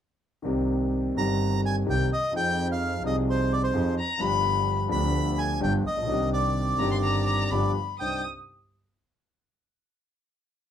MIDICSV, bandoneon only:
0, 0, Header, 1, 2, 480
1, 0, Start_track
1, 0, Key_signature, -3, "minor"
1, 0, Tempo, 469484
1, 460, Time_signature, 4, 2, 24, 8
1, 6215, Tempo, 475059
1, 10887, End_track
2, 0, Start_track
2, 0, Title_t, "Bandoneon"
2, 0, Program_c, 0, 23
2, 1203, Note_on_c, 0, 82, 89
2, 1644, Note_off_c, 0, 82, 0
2, 1694, Note_on_c, 0, 80, 82
2, 1797, Note_off_c, 0, 80, 0
2, 1942, Note_on_c, 0, 79, 88
2, 2149, Note_off_c, 0, 79, 0
2, 2176, Note_on_c, 0, 75, 78
2, 2386, Note_off_c, 0, 75, 0
2, 2418, Note_on_c, 0, 79, 91
2, 2737, Note_off_c, 0, 79, 0
2, 2779, Note_on_c, 0, 77, 83
2, 3095, Note_off_c, 0, 77, 0
2, 3134, Note_on_c, 0, 75, 76
2, 3234, Note_off_c, 0, 75, 0
2, 3374, Note_on_c, 0, 72, 82
2, 3603, Note_off_c, 0, 72, 0
2, 3607, Note_on_c, 0, 74, 76
2, 3705, Note_off_c, 0, 74, 0
2, 3715, Note_on_c, 0, 72, 65
2, 4038, Note_off_c, 0, 72, 0
2, 5026, Note_on_c, 0, 83, 100
2, 5504, Note_on_c, 0, 80, 91
2, 5515, Note_off_c, 0, 83, 0
2, 5723, Note_off_c, 0, 80, 0
2, 5757, Note_on_c, 0, 79, 85
2, 5860, Note_off_c, 0, 79, 0
2, 6001, Note_on_c, 0, 75, 80
2, 6434, Note_off_c, 0, 75, 0
2, 6473, Note_on_c, 0, 74, 80
2, 7875, Note_off_c, 0, 74, 0
2, 8154, Note_on_c, 0, 79, 70
2, 8375, Note_off_c, 0, 79, 0
2, 10887, End_track
0, 0, End_of_file